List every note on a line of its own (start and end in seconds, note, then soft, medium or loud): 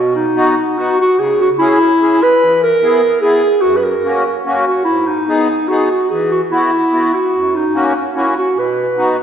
0.00 0.25 B2 medium
0.00 0.12 F#4 medium
0.15 0.79 D#4 medium
0.35 0.54 B3 medium
0.35 0.55 D#4 medium
0.35 0.55 F#4 medium
0.77 0.96 B3 medium
0.77 0.97 D#4 medium
0.77 0.99 F#4 medium
0.77 0.97 F#4 medium
1.01 1.21 F#4 medium
1.18 1.49 C#3 medium
1.18 1.40 G#4 medium
1.41 1.49 F#4 medium
1.59 1.78 C#4 medium
1.59 2.24 E4 loud
1.59 1.79 E4 medium
1.59 1.79 G#4 medium
2.01 2.20 C#4 medium
2.01 2.20 E4 medium
2.01 2.20 G#4 medium
2.23 2.63 B4 loud
2.42 2.72 E3 medium
2.63 3.19 A#4 loud
2.82 3.01 B3 medium
2.82 3.01 E4 medium
2.82 3.02 G#4 medium
3.22 3.42 B3 medium
3.22 3.42 E4 medium
3.22 3.63 G#4 loud
3.22 3.42 G#4 medium
3.61 3.94 F#2 medium
3.61 3.78 F#4 loud
3.77 3.85 B4 medium
3.84 4.39 A#4 medium
4.03 4.23 A#3 medium
4.03 4.24 C#4 medium
4.03 4.24 F#4 medium
4.45 4.65 A#3 medium
4.45 4.65 C#4 medium
4.45 4.65 F#4 medium
4.65 4.84 F#4 medium
4.85 5.18 G#2 medium
4.85 5.09 E4 medium
5.07 5.69 D#4 medium
5.28 5.48 B3 medium
5.28 5.48 D#4 medium
5.28 5.48 G#4 medium
5.68 5.89 B3 medium
5.68 5.89 D#4 medium
5.68 5.90 F#4 medium
5.68 5.89 G#4 medium
5.91 6.09 F#4 medium
6.10 6.42 E3 medium
6.10 6.30 G#4 medium
6.31 6.40 F#4 medium
6.50 6.70 B3 medium
6.50 6.71 E4 medium
6.50 7.16 E4 loud
6.50 6.71 F#4 medium
6.92 7.11 B3 medium
6.92 7.12 E4 medium
6.92 7.12 F#4 medium
7.14 7.57 F#4 medium
7.34 7.64 F#2 medium
7.55 7.95 D#4 medium
7.74 7.93 A#3 medium
7.74 7.93 C#4 medium
7.74 7.94 F#4 medium
8.15 8.34 A#3 medium
8.15 8.34 C#4 medium
8.15 8.35 E4 medium
8.15 8.35 F#4 medium
8.39 8.60 F#4 medium
8.56 8.87 B2 medium
8.56 9.23 B4 medium
8.97 9.16 B3 medium
8.97 9.16 D#4 medium
8.97 9.17 F#4 medium